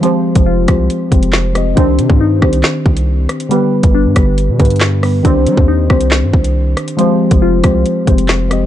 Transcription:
<<
  \new Staff \with { instrumentName = "Synth pluck" } { \time 4/4 \key c \minor \tempo 4 = 138 f4 f'2. | c'4 ees'2. | g4 d'2. | c'4 ees'2. |
f4 f'2. | }
  \new Staff \with { instrumentName = "Synth keys" } { \time 4/4 \key c \minor <f aes c' g' c''>4 r8 <f aes c' g' c''>8 r8 <f aes c' g' c''>8 r8 <f aes c' g' ees''>8 | <ees c' d' g' c''>4 r8 <ees c' d' g' c''>4. r4 | <d g b g' b'>4 r8 <d g b g' b'>8 r8 <d g b g' b'>8 r8 <d g b g' b'>8 | <ees c' d' g' c''>4 r8 <ees c' d' g' c''>4. r4 |
<f aes c' g' c''>4 r8 <f aes c' g' c''>8 r8 <f aes c' g' c''>8 r8 <f aes c' g' ees''>8 | }
  \new Staff \with { instrumentName = "808-style bass" } { \clef bass \time 4/4 \key c \minor r8. f,,8. c,8 r8 f,,4. | c,8 c16 g,8. c,8 r8 c,4 r8 | r8. g,,8 g,16 g,,8. b,16 g,4. | c,8 g16 ees,8. c,8. g,16 c,4 r8 |
r8. f,,8. c,8 r8 f,,4. | }
  \new DrumStaff \with { instrumentName = "Drums" } \drummode { \time 4/4 hh8. <hh bd>16 r8 <hh bd ss>8 hh8 <hh bd>16 hh16 <hc sn>8 <hh ss>8 | <hh bd>8 hh16 bd16 r8 <bd ss>16 hh16 <hc sn>8 bd16 hh16 r8 <hh ss>16 hh16 | hh8. <hh bd>16 r8 <hh bd ss>8 hh8 <hh bd>32 hh32 hh32 hh32 <hc sn>8 <hho ss>8 | <hh bd>8 hh16 bd16 r8 <bd ss>16 hh16 <hc sn>8 bd16 hh16 r8 <hh ss>16 hh16 |
hh8. <hh bd>16 r8 <hh bd ss>8 hh8 <hh bd>16 hh16 <hc sn>8 <hh ss>8 | }
>>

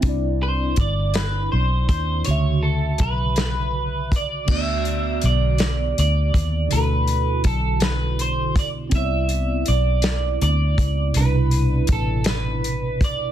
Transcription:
<<
  \new Staff \with { instrumentName = "Clean electric guitar" } { \time 6/8 \key d \mixolydian \tempo 4. = 54 << { r2. | r4. b'4 d''8 | e''4 d''4 d''4 | b'4 a'8 b'8 c''8 d''8 |
e''4 d''4 d''4 | b'4 a'8 b'4 d''8 | } \\ { r8 c''8 d''8 b'8 c''8 c''8 | cis''8 a'8 b'4. r8 | r2. | r2. |
r2. | r2. | } >> }
  \new Staff \with { instrumentName = "Tine electric piano" } { \time 6/8 \key d \mixolydian <c' d' e' d''>2. | <cis d fis' e''>2. | <d b fis' d''>2. | <b, d e' fis' a'>2. |
<b c' e' cis'' d''>2. | <b, c d' e' b'>2. | }
  \new Staff \with { instrumentName = "Fingered electric bass" } { \clef bass \time 6/8 \key d \mixolydian c,4 g,,4 b,,8 ees,8 | d,4 b,,2 | d,4 b,,4 d,8 ees,8 | d,4 b,,2 |
c,4 b,,4 d,8 cis,8 | c,4 a,,2 | }
  \new DrumStaff \with { instrumentName = "Drums" } \drummode { \time 6/8 <hh bd>4 <hh bd>8 <hh sn>4 <hh bd>8 | hh4 <hh bd>8 <hh sn>4 <hh bd>8 | <cymc bd>8 hh8 hh8 <hh sn>8 hh8 <hh bd>8 | hh8 hh8 <hh bd>8 <hh sn>8 hh8 <hh bd>8 |
<hh bd>8 hh8 hh8 <hh sn>8 hh8 <hh bd>8 | hh8 hh8 <hh bd>8 <hh sn>8 hh8 <hh bd>8 | }
>>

